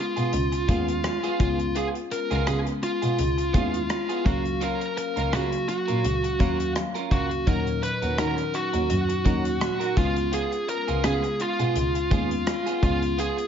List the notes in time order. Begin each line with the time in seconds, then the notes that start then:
Already playing: G#3 B3 C#4 F4
0.16 B2 B3 F4 G#4, closed hi-hat
0.33 C#2, closed hi-hat
0.52 muted clean electric guitar stroke, closed hi-hat
0.68 D#2 G#3 B3 C#4 F4 G#4, kick, closed hi-hat
0.88 muted clean electric guitar stroke, closed hi-hat
1.04 muted clean electric guitar stroke, cross-stick, closed hi-hat
1.23 B3 F4 G#4, closed hi-hat
1.39 C#2 G#3 B3 C#4 F4 G#4, kick, closed hi-hat
1.59 muted clean electric guitar stroke, closed hi-hat
1.75 B3 F4 G#4, closed hi-hat
1.95 muted clean electric guitar stroke, closed hi-hat
2.11 A#4, muted clean electric guitar stroke, closed hi-hat
2.31 C#2 B3 F4 G#4, closed hi-hat
2.46 C#3 B3 F4 G#4, cross-stick, closed hi-hat
2.66 muted clean electric guitar stroke, closed hi-hat
2.82 F4, muted clean electric guitar stroke, closed hi-hat
3.02 B2 B3 F4 G#4, closed hi-hat
3.19 C#2, closed hi-hat
3.38 muted clean electric guitar stroke, closed hi-hat
3.53 D#2 G#3 B3 C#4 E4 F4 G#4, kick, closed hi-hat
3.61 F4
3.73 muted clean electric guitar stroke, closed hi-hat
3.89 muted clean electric guitar stroke, cross-stick, closed hi-hat
4.09 B3 F4 G#4, closed hi-hat
4.25 C#2 F#3 A#3 C#4 F4 F#4 A#4 F5, kick, closed hi-hat
4.45 muted clean electric guitar stroke, closed hi-hat
4.61 C#4 F4 A#4, closed hi-hat
4.81 muted clean electric guitar stroke, closed hi-hat
4.96 A#4, muted clean electric guitar stroke, closed hi-hat
5.16 C#2 C#4 F4 A#4, closed hi-hat
5.32 C#3 C#4 F4 F#4 A#4, cross-stick, closed hi-hat
5.52 muted clean electric guitar stroke, closed hi-hat
5.68 F#4, muted clean electric guitar stroke, closed hi-hat
5.88 A#2 C#4 F4 A#4, closed hi-hat
6.05 C#2, closed hi-hat
6.24 muted clean electric guitar stroke, closed hi-hat
6.39 D#2 F#3 A#3 C#4 F4 A#4 F5, kick, closed hi-hat
6.59 muted clean electric guitar stroke, closed hi-hat
6.75 muted clean electric guitar stroke, cross-stick, closed hi-hat
6.95 C#4 F4 A#4, closed hi-hat
7.11 C#2 C#4 F4 F#4 A#4, kick, closed hi-hat
7.31 muted clean electric guitar stroke, closed hi-hat
7.46 D#2 A#2 F#3 C#4 D#4 F#4 A#4, kick, closed hi-hat
7.66 muted clean electric guitar stroke, closed hi-hat
7.82 B4, muted clean electric guitar stroke, closed hi-hat
8.02 D#2 C#4 F#4 A#4, closed hi-hat
8.18 D#3 C#4 F#4 A#4, cross-stick, closed hi-hat
8.38 muted clean electric guitar stroke, closed hi-hat
8.54 F#4, muted clean electric guitar stroke, closed hi-hat
8.73 D#2 C#4 F#4 A#4, closed hi-hat
8.90 F#2, closed hi-hat
9.09 muted clean electric guitar stroke, closed hi-hat
9.25 D#2 F#3 A#3 C#4 D#4 F#4 A#4, kick, closed hi-hat
9.44 muted clean electric guitar stroke, closed hi-hat
9.60 muted clean electric guitar stroke, cross-stick, closed hi-hat
9.80 C#4 F#4 A#4, closed hi-hat
9.96 C#2 G#3 B3 C#4 F4 G#4, kick, closed hi-hat
10.16 muted clean electric guitar stroke, closed hi-hat
10.32 B3 F4 G#4, closed hi-hat
10.52 muted clean electric guitar stroke, closed hi-hat
10.68 A#4, muted clean electric guitar stroke, closed hi-hat
10.88 C#2 B3 F4 G#4, closed hi-hat
11.04 C#3 B3 F4 G#4, cross-stick, closed hi-hat
11.23 muted clean electric guitar stroke, closed hi-hat
11.40 F4, muted clean electric guitar stroke, closed hi-hat
11.59 B2 B3 F4 G#4, closed hi-hat
11.75 C#2, closed hi-hat
11.95 muted clean electric guitar stroke, closed hi-hat
12.11 D#2 G#3 B3 C#4 F4 G#4, kick, closed hi-hat
12.30 muted clean electric guitar stroke, closed hi-hat
12.46 muted clean electric guitar stroke, cross-stick, closed hi-hat
12.66 B3 F4 G#4, closed hi-hat
12.82 C#2 G#3 B3 C#4 F4 G#4, kick, closed hi-hat
13.02 muted clean electric guitar stroke, closed hi-hat
13.18 B3 F4 G#4, closed hi-hat
13.38 muted clean electric guitar stroke, closed hi-hat